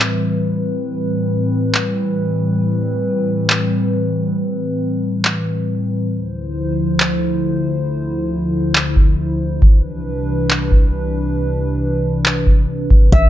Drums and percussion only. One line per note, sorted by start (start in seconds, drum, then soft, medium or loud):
1.75 clap loud
3.50 clap loud
5.25 clap loud
7.00 clap loud
8.75 clap loud
8.96 kick medium
9.62 kick loud
10.51 clap loud
10.72 kick medium
12.26 clap loud
12.47 kick medium
12.91 kick medium
13.12 kick loud
13.12 closed hi-hat medium